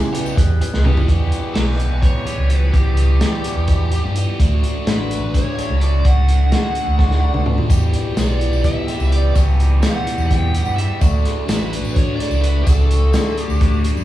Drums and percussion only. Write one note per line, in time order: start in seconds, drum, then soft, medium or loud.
0.03 tambourine soft
0.15 closed hi-hat medium
0.26 tambourine medium
0.37 kick loud
0.37 snare soft
0.37 closed hi-hat medium
0.62 closed hi-hat medium
0.74 snare medium
0.85 mid tom medium
0.85 tambourine soft
0.97 floor tom medium
0.97 tambourine soft
1.08 kick medium
1.08 closed hi-hat medium
1.32 closed hi-hat medium
1.55 snare loud
1.55 closed hi-hat medium
1.80 closed hi-hat soft
2.03 kick loud
2.03 closed hi-hat medium
2.27 closed hi-hat medium
2.50 closed hi-hat medium
2.74 kick medium
2.74 closed hi-hat medium
2.97 closed hi-hat medium
3.21 snare loud
3.21 closed hi-hat medium
3.44 closed hi-hat medium
3.68 kick medium
3.68 closed hi-hat medium
3.92 closed hi-hat medium
4.16 closed hi-hat medium
4.40 kick medium
4.40 closed hi-hat medium
4.64 closed hi-hat medium
4.87 snare loud
4.87 closed hi-hat medium
5.11 closed hi-hat medium
5.34 kick medium
5.34 snare soft
5.34 closed hi-hat medium
5.58 snare soft
5.58 closed hi-hat medium
5.81 closed hi-hat soft
6.05 kick medium
6.05 closed hi-hat medium
6.28 closed hi-hat medium
6.52 snare loud
6.52 closed hi-hat medium
6.75 closed hi-hat medium
6.99 kick medium
6.99 snare medium
7.11 snare soft
7.34 mid tom medium
7.46 mid tom medium
7.58 floor tom medium
7.70 kick loud
7.70 closed hi-hat medium
7.70 tambourine medium
7.82 tambourine soft
7.93 closed hi-hat medium
8.17 snare loud
8.17 closed hi-hat medium
8.17 tambourine medium
8.41 closed hi-hat medium
8.53 tambourine medium
8.64 kick medium
8.64 closed hi-hat medium
8.88 snare soft
8.88 closed hi-hat medium
9.00 tambourine medium
9.12 closed hi-hat medium
9.35 kick medium
9.35 closed hi-hat medium
9.35 tambourine medium
9.60 closed hi-hat medium
9.82 snare loud
9.82 closed hi-hat medium
9.82 tambourine medium
10.07 closed hi-hat soft
10.18 tambourine medium
10.31 kick medium
10.31 snare soft
10.31 closed hi-hat medium
10.54 closed hi-hat medium
10.65 tambourine medium
10.78 closed hi-hat medium
11.01 kick loud
11.01 closed hi-hat medium
11.01 tambourine medium
11.14 tambourine soft
11.25 snare soft
11.25 closed hi-hat medium
11.48 snare loud
11.48 closed hi-hat medium
11.48 tambourine medium
11.73 closed hi-hat medium
11.84 tambourine medium
11.96 kick loud
11.96 closed hi-hat medium
12.20 snare soft
12.20 closed hi-hat medium
12.31 tambourine medium
12.44 closed hi-hat medium
12.67 kick loud
12.67 closed hi-hat medium
12.67 tambourine loud
12.91 closed hi-hat medium
13.13 snare loud
13.13 closed hi-hat medium
13.13 tambourine medium
13.37 closed hi-hat soft
13.50 tambourine medium
13.61 kick loud
13.61 closed hi-hat medium
13.73 tambourine soft
13.84 closed hi-hat medium
13.84 tambourine soft
13.97 tambourine medium